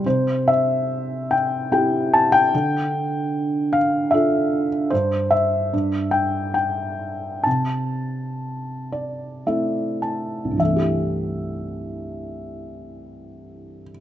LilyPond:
<<
  \new Staff \with { instrumentName = "Felt piano" } { \time 3/4 \key c \major \tempo 4 = 72 << { c''8 e''4 g''8 g''8 a''16 g''16~ | g''4. f''8 e''8. r16 | c''8 e''4 g''8 g''4 | a''2~ a''8 r8 |
e''2. | } \\ { r2. | r2. | r2. | r4. d''8 e''8 a''8 |
r2. | } >> }
  \new Staff \with { instrumentName = "Felt piano" } { \time 3/4 \key c \major c2 <c' e' g'>4 | d2 <d' f' a'>4 | g,4 g,2 | c2 <a c' e'>4 |
<c, g, e a c' g'>2. | }
>>